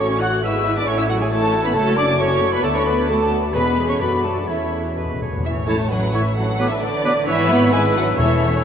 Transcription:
0.00 A1 A3 C#4 F#4 C#5 C#6
0.10 C#4 C#5
0.21 E4 F#4 A4 F#5 F#6
0.32 C#4 C#5
0.43 G#1 G#3 E4 B4 E5 E6
0.54 B3 G#4
0.65 G#3 B4
0.76 B3 D4 G#4 D5 D6
0.87 A1 A3 C#4 E4 A4 C#5 C#6
0.97 C#4 E4 C#5 E5 E6
1.09 F#3 E4 F#4 A4 F#5
1.20 G#3 C#4 G#4 C#5 G#5
1.30 A3 E4 A4 C#5 A5
1.44 C#4 C#5
1.54 E4 A4
1.64 B3 C#4 B4 C#5 B5
1.74 F#1 A3 F#4 A4 C#5 A5
1.87 C#4 F#4
1.96 A3 D4 A4 D5 D6
2.08 C#4 F#4
2.19 A3 C#4 A4 C#5 C#6
2.30 C#4 F#4
2.41 A3 A4
2.52 B3 C#4 F#4 B4 B5
2.63 D2 A3 B3 A4 D5 A5
2.74 C#4 D4 B4 C#5 C#6
2.86 B3 A4 B4 B5
2.98 D4 B4
3.09 A3 B3 F#4 A4 D5 A5
3.20 D4 B4
3.31 B3 A4
3.42 D4 B4
3.53 E2 G#3 B3 G#4 B4 B5
3.66 B3 B4
3.78 G#3 G#4
3.88 B3 C#4 B4 C#5 C#6
4.00 F#2 A3 B3 F#4 A4 B4 D5 B5
4.13 D4 F#4
4.23 A3 F#4 A4 A5
4.37 D4 F#4
4.48 E2 E3 A3 C#4 E4 A4 C#5 E5
4.60 C#4 C#5
4.72 E4 A4
4.85 C#4 C#5
4.97 E2 G#3 G#4 B4
5.05 E2
5.09 E2 B3 B4
5.21 E2 G#3 G#4 C#5
5.30 E2 B3 B4
5.37 E2
5.45 A1 E3 C#4 C#5 E5
5.67 A3 E4 C#5 A5 C#6
5.91 F#3 B4 F#5
6.13 E3 A3 E4 C#5 E5 C#6
6.36 F#3 D4 A4 B4 F#5
6.59 F#3 B3 B4 D6
6.70 E3 E5
6.81 D3 D5
7.05 F#3 B3 B4 D6
7.27 G#1 E3 B3 E4 B4 C#5 E5 E6
7.50 B3 B5
7.72 G#3 B3 E4 B4 G#5 E6
7.95 F#3 D4 F#5
8.18 E1 E2 E3 A3 C#4 E4 A4 C#5 E5 E6

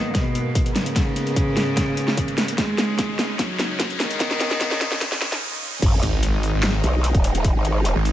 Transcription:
Already playing: G#2 G#3 A#3 B3, riser
0.15 B2, kick, snare, closed hi-hat
0.35 closed hi-hat
0.55 kick, closed hi-hat
0.66 closed hi-hat
0.76 C#3, snare, open hi-hat
0.86 closed hi-hat
0.96 kick, snare, closed hi-hat
1.16 closed hi-hat
1.27 closed hi-hat
1.36 kick, closed hi-hat
1.57 snare, open hi-hat
1.77 kick, snare, closed hi-hat
1.97 closed hi-hat
2.08 snare
2.17 kick, closed hi-hat
2.28 closed hi-hat
2.38 snare, open hi-hat
2.48 closed hi-hat
2.58 C#3 G#3 C#4 D#4, kick, snare, closed hi-hat
2.78 snare, closed hi-hat
2.99 kick, snare, closed hi-hat
3.19 snare, open hi-hat
3.39 F#3, kick, snare, closed hi-hat
3.59 snare, closed hi-hat
3.80 kick, snare, closed hi-hat
3.90 closed hi-hat
4.00 D#3, snare, open hi-hat
4.11 closed hi-hat
4.20 kick, snare, closed hi-hat
4.31 snare
4.40 snare, closed hi-hat
4.51 snare, closed hi-hat
4.61 kick, snare, closed hi-hat
4.71 snare
4.81 snare, open hi-hat
4.92 snare
5.01 kick, snare, closed hi-hat
5.12 snare
5.22 snare, closed hi-hat
5.32 snare
5.82 G#1 D#3 G#3 D#4, kick, closed hi-hat, crash, sub drop
6.03 G#1, closed hi-hat
6.23 closed hi-hat
6.33 G#1
6.43 open hi-hat
6.54 G#1
6.63 snare, clap, closed hi-hat
6.84 B1, closed hi-hat
7.04 closed hi-hat
7.15 D#1, kick, closed hi-hat
7.24 open hi-hat
7.35 closed hi-hat
7.44 kick, closed hi-hat
7.55 G#1
7.65 closed hi-hat
7.85 closed hi-hat
7.96 G#1
8.05 open hi-hat

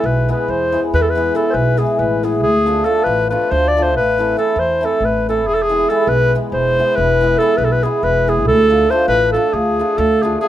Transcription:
Already playing: E3 G#3
0.04 B1 B4
0.28 E3 G#3 B3 E4 B4
0.48 E2 C5
0.72 E3 G#3 B3 E4
0.94 E2 B4
1.02 A4
1.10 B4
1.15 E3 G#3 B3 E4
1.35 E3 G#3 B3 E4 A4
1.50 B4 C5
1.54 B1
1.77 E3 G#3 B3 E4 G#4
1.99 A1 B4
2.23 E3 G#3 B3 E4 G#4
2.43 D2 G#4
2.66 F3 A3 D4 F4
2.84 F3 A3 D4 F4 A4
3.04 A1 B4
3.30 F3 A3 D4 F4 B4
3.51 D2 C5
3.68 D5
3.77 F3 A3 D4 F4
3.83 C5
3.96 A1 B4
4.18 E3 A3 C4 E4
4.37 E3 A3 C4 E4 A4
4.56 E2 C5
4.81 E3 A3 C4 E4
4.85 A4
5.00 A1
5.05 B4
5.29 E3 A3 C4 E4 A4
5.47 E1 G#4
5.55 A4
5.63 G#4
5.69 E3 G#3 B3 E4
5.89 E3 G#3 B3 E4 A4
6.07 B1 B4
6.35 E3 G#3 B3 E4
6.52 E1 C5
6.79 E3 G#3 B3 E4
6.96 E1 B4
7.21 E3 G#3 B3 E4
7.38 E3 G#3 B3 A4
7.42 E4
7.57 B1 B4
7.65 A4
7.72 B4
7.83 E3 G#3 B3 E4 G#4
8.03 E1 B4
8.27 E3 G#3 B3 E4 G#4
8.47 D2 A4
8.69 F3 A3 D4 F4
8.90 F3 A3 D4 F4 C5
9.08 A1 B4
9.32 F3 A3 D4 F4 A4
9.53 D2 G#4
9.79 F3 A3 D4 F4
9.98 D2 A4
10.22 F3 A3 D4 F4 G#4
10.40 F3 A3 D4 F4 G#4

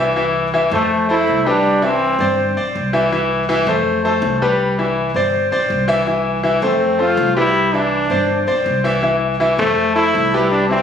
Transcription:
Already playing: C2 E3 E4 E5
0.16 E3 E4 E5
0.54 E3 E4 E5
0.71 F2 A3 A4 C5
1.09 A3 E4 A4 C5
1.27 C2
1.46 G3 D4 G4 B4
1.82 E3 C4 E4 E5
2.19 G1 C4 C5 D5
2.57 B1 C4 C5 D5
2.75 C2
2.93 E3 E4 E5
3.12 E3 E4 E5
3.49 E3 E4 E5
3.67 F2 A3 A4 C5
4.05 A3 A4 C5
4.22 C2
4.42 G3 G4 B4
4.79 E3 E4 E5
5.14 G1 C4 C5 D5
5.52 B1 C4 C5 D5
5.70 C2
5.88 E3 E4 E5
6.07 E3 E4 E5
6.43 E3 E4 E5
6.62 F2 A3 C4 A4 C5
6.99 A3 F4 A4 C5
7.17 C2
7.37 G3 E4 G4 B4
7.74 E3 D4 E4 E5
8.10 G1 C4 C5 D5
8.47 B1 C4 C5 D5
8.66 C2
8.84 E3 E4 E5
9.03 E3 E4 E5
9.40 E3 E4 E5
9.59 F2 A3 A4 C5
9.95 A3 E4 A4 C5
10.15 C2
10.34 G3 G4 B4
10.51 D4
10.69 E3 C4 E4 E5

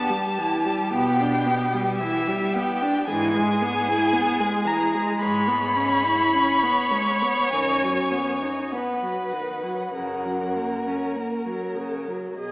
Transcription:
Already playing: B3 G4 A5
0.09 G3
0.38 E3
0.65 G3
0.90 B2 B3 G5
1.20 D4
1.47 B3
1.74 G3
1.98 E3 E5
2.28 G3
2.54 B3 G5
2.82 D4
3.07 G#2 E3 G#4 G#5
3.35 G#3
3.62 B3
3.88 E4
4.13 B3
4.40 G#3
4.65 E3 A#5
4.94 G#3
5.20 G#2 G#3 C#5 B5
5.48 B3
5.76 C#4
6.04 E4
6.35 C#4
6.63 B3
6.91 G#3
7.22 B3
7.49 F#2 G#5
7.53 D#3
7.83 F#3
8.12 B3
8.42 D#4
8.72 B3 B4 F#5
9.02 F#3
9.32 D#3
9.63 F#3
9.94 F#2 C#3
9.98 A#4
10.25 F#3
10.55 A#3
10.87 C#4
11.16 A#3
11.46 F#3
11.76 C#3
12.07 F#3
12.37 B2 G#4 D#5

